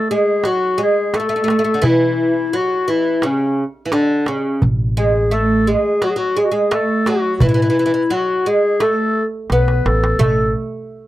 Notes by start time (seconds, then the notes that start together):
Already playing: A3
0.10 G#3 G#4
0.44 F#3 F#4, darbuka tek
0.78 G#3
0.82 G#4
1.14 A3 A4, darbuka tek
1.20 A3
1.29 A3, darbuka ka
1.36 A3
1.44 A3
1.48 A3, darbuka tek
1.59 A3
1.64 A3
1.74 D3
1.82 E3 E4, darbuka dum
2.53 F#3 F#4
2.88 E3 E4
3.22 C#3 C#4, darbuka tek
3.86 E3
3.92 D3 D4, darbuka tek
4.26 C#3 C#4, darbuka tek
4.62 A1, darbuka dum
4.97 G#3 G#4
5.31 A3 A4
5.67 G#3 G#4
6.02 F#3 F#4, darbuka tek
6.10 G#4
6.16 F#3 F#4
6.37 G#3 G#4
6.45 F#4
6.51 G#3 G#4
6.71 A3 A4, darbuka tek
6.89 darbuka ka
7.06 F#3 F#4, darbuka tek
7.37 F#4, darbuka dum
7.41 A2 E3 E4
7.49 E3
7.54 E3
7.62 E3
7.70 E3
7.79 E3
7.86 E3
7.94 E3
8.10 F#3 F#4, darbuka ka
8.46 G#3 G#4
8.80 A3 A4, darbuka tek
9.50 B1 B3 B4, darbuka tek
9.68 darbuka ka
9.85 A1 A4, darbuka tek
10.04 darbuka ka
10.19 A1 A3 A4, darbuka dum